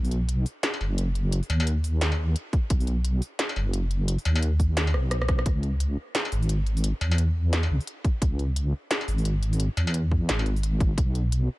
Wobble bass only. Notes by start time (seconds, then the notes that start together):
Already playing: B1
0.81 F#1
1.50 D#2
2.70 B1
3.56 F#1
4.26 D#2
4.94 B1
5.29 B1
5.46 C#2
6.32 G#1
7.01 E2
7.70 C#2
8.22 C#2
9.08 G#1
9.77 E2
10.29 G#1
10.81 G#1
10.98 B1